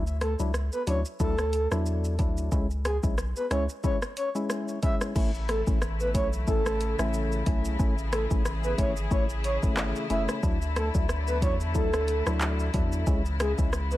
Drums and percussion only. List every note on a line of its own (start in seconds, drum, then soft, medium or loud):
0.07 shaker soft
0.21 cross-stick loud
0.21 closed hi-hat medium
0.21 shaker medium
0.39 shaker medium
0.54 cross-stick medium
0.54 shaker medium
0.72 shaker medium
0.87 closed hi-hat medium
0.87 shaker medium
1.05 shaker medium
1.20 kick medium
1.20 shaker medium
1.38 cross-stick medium
1.38 shaker medium
1.53 closed hi-hat medium
1.53 shaker medium
1.72 cross-stick medium
1.72 shaker medium
1.86 shaker medium
2.04 shaker medium
2.19 kick loud
2.19 closed hi-hat medium
2.19 shaker soft
2.37 shaker medium
2.52 kick loud
2.52 shaker medium
2.71 shaker medium
2.85 cross-stick loud
2.85 closed hi-hat medium
2.85 shaker medium
3.03 kick loud
3.03 shaker medium
3.18 cross-stick medium
3.18 shaker medium
3.36 shaker medium
3.51 cross-stick medium
3.51 closed hi-hat medium
3.51 shaker medium
3.69 shaker medium
3.84 kick medium
3.84 shaker medium
4.02 cross-stick medium
4.02 shaker medium
4.17 closed hi-hat medium
4.17 shaker medium
4.35 shaker medium
4.50 cross-stick medium
4.50 shaker medium
4.68 shaker medium
4.83 kick medium
4.83 closed hi-hat medium
4.83 shaker soft
5.01 cross-stick medium
5.01 shaker medium
5.16 kick loud
5.16 crash medium
5.16 shaker medium
5.34 shaker soft
5.49 cross-stick loud
5.49 closed hi-hat medium
5.49 shaker medium
5.67 kick loud
5.67 shaker medium
5.82 cross-stick medium
5.82 shaker medium
6.00 shaker medium
6.14 kick medium
6.14 closed hi-hat medium
6.14 shaker medium
6.33 shaker medium
6.47 kick medium
6.47 shaker medium
6.66 cross-stick medium
6.66 shaker medium
6.81 closed hi-hat medium
6.81 shaker medium
6.99 cross-stick medium
6.99 shaker medium
7.14 shaker medium
7.32 shaker medium
7.46 kick loud
7.46 closed hi-hat medium
7.46 shaker soft
7.65 shaker medium
7.79 kick loud
7.79 shaker medium
7.98 shaker soft
8.13 cross-stick loud
8.13 closed hi-hat medium
8.13 shaker medium
8.31 kick loud
8.31 shaker medium
8.45 cross-stick medium
8.45 shaker medium
8.64 shaker medium
8.78 kick medium
8.78 closed hi-hat medium
8.78 shaker medium
8.97 shaker medium
9.11 kick medium
9.11 shaker medium
9.30 shaker medium
9.44 closed hi-hat medium
9.44 shaker medium
9.63 kick medium
9.63 shaker medium
9.77 cross-stick loud
9.77 clap loud
9.77 shaker medium
9.96 shaker medium
10.10 closed hi-hat medium
10.10 shaker soft
10.29 cross-stick medium
10.29 shaker medium
10.43 kick loud
10.43 shaker medium
10.62 shaker medium
10.76 cross-stick loud
10.76 closed hi-hat medium
10.76 shaker medium
10.94 kick loud
10.94 shaker medium
11.09 cross-stick medium
11.09 shaker medium
11.28 shaker medium
11.42 kick medium
11.42 closed hi-hat medium
11.42 shaker medium
11.60 shaker medium
11.75 kick medium
11.75 shaker medium
11.93 cross-stick loud
11.93 shaker medium
12.08 closed hi-hat medium
12.08 shaker medium
12.27 cross-stick loud
12.27 shaker medium
12.41 clap medium
12.41 shaker medium
12.59 shaker medium
12.74 kick medium
12.74 closed hi-hat medium
12.74 shaker soft
12.92 shaker medium
13.07 kick loud
13.07 shaker medium
13.26 shaker medium
13.40 cross-stick loud
13.40 closed hi-hat medium
13.40 shaker medium
13.58 kick medium
13.58 shaker medium
13.73 cross-stick medium
13.73 shaker medium
13.91 shaker medium